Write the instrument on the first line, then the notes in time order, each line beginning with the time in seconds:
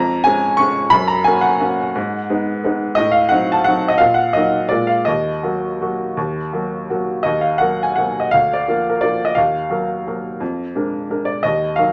upright piano
Already playing: F2 A#5
0.24 G#3 C#4 G#5
0.57 G#3 C#4 C#6
0.90 F#2 B5
1.07 A#5
1.24 A#3 C#4 F#4 G#5
1.41 F#5
1.60 A#3 C#4 F#4
1.95 G#2
2.30 G#3 B3 D#4
2.64 G#3 B3 D#4
2.95 A2 D#5
3.12 F5
3.29 F#3 C4 D#4 F#5
3.52 A5
3.64 F#3 C4 D#4 F#5
3.88 D#5
3.98 A#2 F5
4.14 F#5
4.33 F#3 A#3 D#4 D#5
4.69 A#2 G#3 A#3 D5
4.73 F4
4.87 F5
5.05 D#2 D#5
5.43 F#3 A#3 F#4
5.81 F#3 A#3 F#4
6.17 D#2
6.53 F#3 A#3 F#4
6.90 F#3 A#3 F#4
7.23 D#2 D#5
7.41 F5
7.58 F#3 A#3 A#4 F#5
7.83 G#5
7.96 F#3 A#3 A#4 F#5
8.20 D#5
8.31 D2 F5
8.53 D5
8.68 F3 A#3 A#4
8.90 A#4
9.01 F3 A#3 A#4 D5
9.25 D#5
9.35 D#2 F5
9.70 F#3 A#3 A#4
10.07 F#3 A#3 A#4
10.40 F2
10.75 G#3 D4 A#4
11.10 G#3 D4 A#4
11.25 D5
11.43 D#2 D#5
11.76 F#3 D#4 A#4 F5